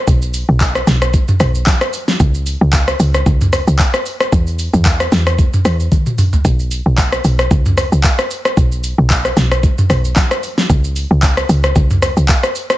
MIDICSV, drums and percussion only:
0, 0, Header, 1, 2, 480
1, 0, Start_track
1, 0, Tempo, 530973
1, 68, Time_signature, 4, 2, 24, 8
1, 11552, End_track
2, 0, Start_track
2, 0, Title_t, "Drums"
2, 68, Note_on_c, 9, 36, 112
2, 68, Note_on_c, 9, 82, 85
2, 158, Note_off_c, 9, 36, 0
2, 158, Note_off_c, 9, 82, 0
2, 200, Note_on_c, 9, 82, 63
2, 291, Note_off_c, 9, 82, 0
2, 305, Note_on_c, 9, 46, 59
2, 305, Note_on_c, 9, 82, 101
2, 396, Note_off_c, 9, 46, 0
2, 396, Note_off_c, 9, 82, 0
2, 548, Note_on_c, 9, 36, 108
2, 548, Note_on_c, 9, 82, 89
2, 549, Note_on_c, 9, 39, 93
2, 638, Note_off_c, 9, 82, 0
2, 639, Note_off_c, 9, 36, 0
2, 639, Note_off_c, 9, 39, 0
2, 681, Note_on_c, 9, 37, 91
2, 682, Note_on_c, 9, 82, 49
2, 771, Note_off_c, 9, 37, 0
2, 773, Note_off_c, 9, 82, 0
2, 788, Note_on_c, 9, 46, 54
2, 788, Note_on_c, 9, 82, 98
2, 790, Note_on_c, 9, 38, 71
2, 879, Note_off_c, 9, 46, 0
2, 879, Note_off_c, 9, 82, 0
2, 880, Note_off_c, 9, 38, 0
2, 920, Note_on_c, 9, 37, 96
2, 920, Note_on_c, 9, 82, 55
2, 1010, Note_off_c, 9, 82, 0
2, 1011, Note_off_c, 9, 37, 0
2, 1027, Note_on_c, 9, 36, 114
2, 1027, Note_on_c, 9, 82, 65
2, 1117, Note_off_c, 9, 82, 0
2, 1118, Note_off_c, 9, 36, 0
2, 1159, Note_on_c, 9, 82, 50
2, 1161, Note_on_c, 9, 45, 97
2, 1250, Note_off_c, 9, 82, 0
2, 1252, Note_off_c, 9, 45, 0
2, 1266, Note_on_c, 9, 37, 93
2, 1267, Note_on_c, 9, 46, 53
2, 1267, Note_on_c, 9, 82, 87
2, 1356, Note_off_c, 9, 37, 0
2, 1357, Note_off_c, 9, 46, 0
2, 1357, Note_off_c, 9, 82, 0
2, 1400, Note_on_c, 9, 82, 66
2, 1490, Note_off_c, 9, 82, 0
2, 1506, Note_on_c, 9, 38, 67
2, 1506, Note_on_c, 9, 39, 99
2, 1509, Note_on_c, 9, 36, 111
2, 1509, Note_on_c, 9, 82, 80
2, 1596, Note_off_c, 9, 38, 0
2, 1596, Note_off_c, 9, 39, 0
2, 1599, Note_off_c, 9, 36, 0
2, 1599, Note_off_c, 9, 82, 0
2, 1638, Note_on_c, 9, 37, 103
2, 1639, Note_on_c, 9, 82, 53
2, 1728, Note_off_c, 9, 37, 0
2, 1729, Note_off_c, 9, 82, 0
2, 1747, Note_on_c, 9, 46, 54
2, 1747, Note_on_c, 9, 82, 96
2, 1838, Note_off_c, 9, 46, 0
2, 1838, Note_off_c, 9, 82, 0
2, 1880, Note_on_c, 9, 38, 71
2, 1882, Note_on_c, 9, 82, 50
2, 1971, Note_off_c, 9, 38, 0
2, 1972, Note_off_c, 9, 82, 0
2, 1988, Note_on_c, 9, 36, 116
2, 1988, Note_on_c, 9, 82, 86
2, 2078, Note_off_c, 9, 82, 0
2, 2079, Note_off_c, 9, 36, 0
2, 2120, Note_on_c, 9, 82, 62
2, 2210, Note_off_c, 9, 82, 0
2, 2227, Note_on_c, 9, 46, 59
2, 2227, Note_on_c, 9, 82, 97
2, 2318, Note_off_c, 9, 46, 0
2, 2318, Note_off_c, 9, 82, 0
2, 2468, Note_on_c, 9, 82, 88
2, 2469, Note_on_c, 9, 36, 106
2, 2469, Note_on_c, 9, 39, 99
2, 2558, Note_off_c, 9, 82, 0
2, 2559, Note_off_c, 9, 36, 0
2, 2559, Note_off_c, 9, 39, 0
2, 2601, Note_on_c, 9, 37, 97
2, 2603, Note_on_c, 9, 82, 47
2, 2692, Note_off_c, 9, 37, 0
2, 2693, Note_off_c, 9, 82, 0
2, 2709, Note_on_c, 9, 46, 57
2, 2709, Note_on_c, 9, 82, 93
2, 2800, Note_off_c, 9, 46, 0
2, 2800, Note_off_c, 9, 82, 0
2, 2842, Note_on_c, 9, 82, 56
2, 2843, Note_on_c, 9, 37, 94
2, 2932, Note_off_c, 9, 82, 0
2, 2933, Note_off_c, 9, 37, 0
2, 2949, Note_on_c, 9, 36, 112
2, 2949, Note_on_c, 9, 82, 69
2, 3039, Note_off_c, 9, 36, 0
2, 3040, Note_off_c, 9, 82, 0
2, 3084, Note_on_c, 9, 82, 50
2, 3086, Note_on_c, 9, 45, 91
2, 3174, Note_off_c, 9, 82, 0
2, 3176, Note_off_c, 9, 45, 0
2, 3190, Note_on_c, 9, 37, 96
2, 3190, Note_on_c, 9, 46, 53
2, 3190, Note_on_c, 9, 82, 88
2, 3280, Note_off_c, 9, 37, 0
2, 3281, Note_off_c, 9, 46, 0
2, 3281, Note_off_c, 9, 82, 0
2, 3323, Note_on_c, 9, 82, 66
2, 3413, Note_off_c, 9, 82, 0
2, 3427, Note_on_c, 9, 39, 95
2, 3429, Note_on_c, 9, 36, 106
2, 3430, Note_on_c, 9, 82, 78
2, 3517, Note_off_c, 9, 39, 0
2, 3520, Note_off_c, 9, 36, 0
2, 3521, Note_off_c, 9, 82, 0
2, 3560, Note_on_c, 9, 37, 103
2, 3560, Note_on_c, 9, 82, 52
2, 3650, Note_off_c, 9, 37, 0
2, 3651, Note_off_c, 9, 82, 0
2, 3669, Note_on_c, 9, 46, 55
2, 3669, Note_on_c, 9, 82, 92
2, 3759, Note_off_c, 9, 46, 0
2, 3759, Note_off_c, 9, 82, 0
2, 3801, Note_on_c, 9, 37, 108
2, 3802, Note_on_c, 9, 82, 53
2, 3891, Note_off_c, 9, 37, 0
2, 3893, Note_off_c, 9, 82, 0
2, 3908, Note_on_c, 9, 82, 86
2, 3909, Note_on_c, 9, 36, 115
2, 3999, Note_off_c, 9, 36, 0
2, 3999, Note_off_c, 9, 82, 0
2, 4041, Note_on_c, 9, 82, 62
2, 4131, Note_off_c, 9, 82, 0
2, 4149, Note_on_c, 9, 46, 57
2, 4149, Note_on_c, 9, 82, 103
2, 4239, Note_off_c, 9, 46, 0
2, 4239, Note_off_c, 9, 82, 0
2, 4281, Note_on_c, 9, 82, 60
2, 4283, Note_on_c, 9, 45, 66
2, 4371, Note_off_c, 9, 82, 0
2, 4373, Note_off_c, 9, 45, 0
2, 4388, Note_on_c, 9, 82, 83
2, 4389, Note_on_c, 9, 36, 103
2, 4389, Note_on_c, 9, 39, 96
2, 4478, Note_off_c, 9, 82, 0
2, 4479, Note_off_c, 9, 36, 0
2, 4479, Note_off_c, 9, 39, 0
2, 4522, Note_on_c, 9, 37, 96
2, 4523, Note_on_c, 9, 82, 48
2, 4612, Note_off_c, 9, 37, 0
2, 4613, Note_off_c, 9, 82, 0
2, 4628, Note_on_c, 9, 46, 54
2, 4628, Note_on_c, 9, 82, 92
2, 4629, Note_on_c, 9, 38, 72
2, 4718, Note_off_c, 9, 46, 0
2, 4718, Note_off_c, 9, 82, 0
2, 4720, Note_off_c, 9, 38, 0
2, 4761, Note_on_c, 9, 37, 97
2, 4761, Note_on_c, 9, 82, 57
2, 4851, Note_off_c, 9, 82, 0
2, 4852, Note_off_c, 9, 37, 0
2, 4868, Note_on_c, 9, 36, 108
2, 4869, Note_on_c, 9, 82, 69
2, 4959, Note_off_c, 9, 36, 0
2, 4959, Note_off_c, 9, 82, 0
2, 5003, Note_on_c, 9, 82, 50
2, 5005, Note_on_c, 9, 45, 93
2, 5094, Note_off_c, 9, 82, 0
2, 5095, Note_off_c, 9, 45, 0
2, 5109, Note_on_c, 9, 37, 96
2, 5110, Note_on_c, 9, 46, 52
2, 5110, Note_on_c, 9, 82, 88
2, 5199, Note_off_c, 9, 37, 0
2, 5200, Note_off_c, 9, 46, 0
2, 5200, Note_off_c, 9, 82, 0
2, 5243, Note_on_c, 9, 82, 65
2, 5333, Note_off_c, 9, 82, 0
2, 5349, Note_on_c, 9, 36, 110
2, 5350, Note_on_c, 9, 48, 66
2, 5352, Note_on_c, 9, 82, 77
2, 5440, Note_off_c, 9, 36, 0
2, 5441, Note_off_c, 9, 48, 0
2, 5442, Note_off_c, 9, 82, 0
2, 5481, Note_on_c, 9, 82, 51
2, 5482, Note_on_c, 9, 47, 68
2, 5572, Note_off_c, 9, 47, 0
2, 5572, Note_off_c, 9, 82, 0
2, 5590, Note_on_c, 9, 45, 100
2, 5590, Note_on_c, 9, 46, 56
2, 5590, Note_on_c, 9, 82, 94
2, 5680, Note_off_c, 9, 45, 0
2, 5680, Note_off_c, 9, 46, 0
2, 5680, Note_off_c, 9, 82, 0
2, 5722, Note_on_c, 9, 43, 99
2, 5723, Note_on_c, 9, 82, 51
2, 5812, Note_off_c, 9, 43, 0
2, 5813, Note_off_c, 9, 82, 0
2, 5829, Note_on_c, 9, 36, 113
2, 5830, Note_on_c, 9, 82, 86
2, 5919, Note_off_c, 9, 36, 0
2, 5920, Note_off_c, 9, 82, 0
2, 5962, Note_on_c, 9, 82, 65
2, 6052, Note_off_c, 9, 82, 0
2, 6067, Note_on_c, 9, 46, 60
2, 6067, Note_on_c, 9, 82, 102
2, 6158, Note_off_c, 9, 46, 0
2, 6158, Note_off_c, 9, 82, 0
2, 6309, Note_on_c, 9, 36, 106
2, 6309, Note_on_c, 9, 82, 85
2, 6310, Note_on_c, 9, 39, 97
2, 6399, Note_off_c, 9, 36, 0
2, 6399, Note_off_c, 9, 82, 0
2, 6400, Note_off_c, 9, 39, 0
2, 6440, Note_on_c, 9, 37, 96
2, 6442, Note_on_c, 9, 82, 49
2, 6531, Note_off_c, 9, 37, 0
2, 6532, Note_off_c, 9, 82, 0
2, 6548, Note_on_c, 9, 46, 55
2, 6548, Note_on_c, 9, 82, 92
2, 6639, Note_off_c, 9, 46, 0
2, 6639, Note_off_c, 9, 82, 0
2, 6680, Note_on_c, 9, 82, 52
2, 6681, Note_on_c, 9, 37, 101
2, 6771, Note_off_c, 9, 37, 0
2, 6771, Note_off_c, 9, 82, 0
2, 6788, Note_on_c, 9, 36, 114
2, 6789, Note_on_c, 9, 82, 70
2, 6878, Note_off_c, 9, 36, 0
2, 6879, Note_off_c, 9, 82, 0
2, 6922, Note_on_c, 9, 82, 47
2, 6924, Note_on_c, 9, 45, 94
2, 7013, Note_off_c, 9, 82, 0
2, 7015, Note_off_c, 9, 45, 0
2, 7029, Note_on_c, 9, 37, 97
2, 7030, Note_on_c, 9, 46, 53
2, 7030, Note_on_c, 9, 82, 88
2, 7119, Note_off_c, 9, 37, 0
2, 7120, Note_off_c, 9, 46, 0
2, 7120, Note_off_c, 9, 82, 0
2, 7162, Note_on_c, 9, 82, 67
2, 7253, Note_off_c, 9, 82, 0
2, 7267, Note_on_c, 9, 39, 100
2, 7269, Note_on_c, 9, 36, 106
2, 7270, Note_on_c, 9, 82, 81
2, 7357, Note_off_c, 9, 39, 0
2, 7359, Note_off_c, 9, 36, 0
2, 7361, Note_off_c, 9, 82, 0
2, 7401, Note_on_c, 9, 37, 97
2, 7402, Note_on_c, 9, 82, 51
2, 7491, Note_off_c, 9, 37, 0
2, 7492, Note_off_c, 9, 82, 0
2, 7510, Note_on_c, 9, 46, 57
2, 7510, Note_on_c, 9, 82, 94
2, 7600, Note_off_c, 9, 46, 0
2, 7600, Note_off_c, 9, 82, 0
2, 7641, Note_on_c, 9, 37, 105
2, 7643, Note_on_c, 9, 82, 51
2, 7732, Note_off_c, 9, 37, 0
2, 7733, Note_off_c, 9, 82, 0
2, 7749, Note_on_c, 9, 36, 110
2, 7749, Note_on_c, 9, 82, 85
2, 7839, Note_off_c, 9, 36, 0
2, 7839, Note_off_c, 9, 82, 0
2, 7882, Note_on_c, 9, 82, 61
2, 7973, Note_off_c, 9, 82, 0
2, 7989, Note_on_c, 9, 46, 62
2, 7989, Note_on_c, 9, 82, 100
2, 8079, Note_off_c, 9, 46, 0
2, 8079, Note_off_c, 9, 82, 0
2, 8228, Note_on_c, 9, 82, 85
2, 8229, Note_on_c, 9, 36, 104
2, 8229, Note_on_c, 9, 39, 92
2, 8319, Note_off_c, 9, 36, 0
2, 8319, Note_off_c, 9, 82, 0
2, 8320, Note_off_c, 9, 39, 0
2, 8361, Note_on_c, 9, 37, 94
2, 8363, Note_on_c, 9, 82, 48
2, 8452, Note_off_c, 9, 37, 0
2, 8453, Note_off_c, 9, 82, 0
2, 8469, Note_on_c, 9, 46, 54
2, 8469, Note_on_c, 9, 82, 98
2, 8470, Note_on_c, 9, 38, 71
2, 8559, Note_off_c, 9, 46, 0
2, 8559, Note_off_c, 9, 82, 0
2, 8560, Note_off_c, 9, 38, 0
2, 8601, Note_on_c, 9, 82, 56
2, 8602, Note_on_c, 9, 37, 99
2, 8691, Note_off_c, 9, 82, 0
2, 8692, Note_off_c, 9, 37, 0
2, 8708, Note_on_c, 9, 36, 115
2, 8709, Note_on_c, 9, 82, 68
2, 8799, Note_off_c, 9, 36, 0
2, 8800, Note_off_c, 9, 82, 0
2, 8843, Note_on_c, 9, 82, 50
2, 8845, Note_on_c, 9, 45, 96
2, 8933, Note_off_c, 9, 82, 0
2, 8935, Note_off_c, 9, 45, 0
2, 8948, Note_on_c, 9, 37, 93
2, 8949, Note_on_c, 9, 46, 53
2, 8949, Note_on_c, 9, 82, 90
2, 9039, Note_off_c, 9, 37, 0
2, 9039, Note_off_c, 9, 46, 0
2, 9039, Note_off_c, 9, 82, 0
2, 9082, Note_on_c, 9, 82, 65
2, 9173, Note_off_c, 9, 82, 0
2, 9187, Note_on_c, 9, 38, 66
2, 9187, Note_on_c, 9, 39, 96
2, 9189, Note_on_c, 9, 36, 110
2, 9190, Note_on_c, 9, 82, 77
2, 9277, Note_off_c, 9, 38, 0
2, 9277, Note_off_c, 9, 39, 0
2, 9280, Note_off_c, 9, 36, 0
2, 9281, Note_off_c, 9, 82, 0
2, 9321, Note_on_c, 9, 37, 96
2, 9322, Note_on_c, 9, 82, 50
2, 9412, Note_off_c, 9, 37, 0
2, 9412, Note_off_c, 9, 82, 0
2, 9431, Note_on_c, 9, 46, 55
2, 9431, Note_on_c, 9, 82, 96
2, 9521, Note_off_c, 9, 46, 0
2, 9521, Note_off_c, 9, 82, 0
2, 9562, Note_on_c, 9, 38, 76
2, 9564, Note_on_c, 9, 82, 50
2, 9653, Note_off_c, 9, 38, 0
2, 9654, Note_off_c, 9, 82, 0
2, 9669, Note_on_c, 9, 36, 113
2, 9671, Note_on_c, 9, 82, 88
2, 9760, Note_off_c, 9, 36, 0
2, 9761, Note_off_c, 9, 82, 0
2, 9802, Note_on_c, 9, 82, 63
2, 9893, Note_off_c, 9, 82, 0
2, 9908, Note_on_c, 9, 46, 60
2, 9908, Note_on_c, 9, 82, 103
2, 9999, Note_off_c, 9, 46, 0
2, 9999, Note_off_c, 9, 82, 0
2, 10148, Note_on_c, 9, 82, 89
2, 10149, Note_on_c, 9, 36, 108
2, 10149, Note_on_c, 9, 39, 97
2, 10238, Note_off_c, 9, 82, 0
2, 10239, Note_off_c, 9, 36, 0
2, 10239, Note_off_c, 9, 39, 0
2, 10281, Note_on_c, 9, 37, 97
2, 10282, Note_on_c, 9, 82, 47
2, 10371, Note_off_c, 9, 37, 0
2, 10373, Note_off_c, 9, 82, 0
2, 10390, Note_on_c, 9, 46, 53
2, 10390, Note_on_c, 9, 82, 95
2, 10480, Note_off_c, 9, 46, 0
2, 10480, Note_off_c, 9, 82, 0
2, 10520, Note_on_c, 9, 82, 55
2, 10521, Note_on_c, 9, 37, 99
2, 10611, Note_off_c, 9, 37, 0
2, 10611, Note_off_c, 9, 82, 0
2, 10628, Note_on_c, 9, 36, 114
2, 10628, Note_on_c, 9, 82, 67
2, 10718, Note_off_c, 9, 82, 0
2, 10719, Note_off_c, 9, 36, 0
2, 10762, Note_on_c, 9, 82, 50
2, 10764, Note_on_c, 9, 45, 96
2, 10852, Note_off_c, 9, 82, 0
2, 10854, Note_off_c, 9, 45, 0
2, 10870, Note_on_c, 9, 37, 97
2, 10871, Note_on_c, 9, 46, 52
2, 10871, Note_on_c, 9, 82, 88
2, 10960, Note_off_c, 9, 37, 0
2, 10961, Note_off_c, 9, 46, 0
2, 10961, Note_off_c, 9, 82, 0
2, 11002, Note_on_c, 9, 82, 63
2, 11092, Note_off_c, 9, 82, 0
2, 11108, Note_on_c, 9, 39, 98
2, 11110, Note_on_c, 9, 36, 107
2, 11111, Note_on_c, 9, 82, 77
2, 11198, Note_off_c, 9, 39, 0
2, 11200, Note_off_c, 9, 36, 0
2, 11201, Note_off_c, 9, 82, 0
2, 11240, Note_on_c, 9, 37, 97
2, 11241, Note_on_c, 9, 82, 50
2, 11331, Note_off_c, 9, 37, 0
2, 11332, Note_off_c, 9, 82, 0
2, 11349, Note_on_c, 9, 46, 54
2, 11349, Note_on_c, 9, 82, 97
2, 11439, Note_off_c, 9, 46, 0
2, 11439, Note_off_c, 9, 82, 0
2, 11481, Note_on_c, 9, 37, 104
2, 11482, Note_on_c, 9, 82, 51
2, 11552, Note_off_c, 9, 37, 0
2, 11552, Note_off_c, 9, 82, 0
2, 11552, End_track
0, 0, End_of_file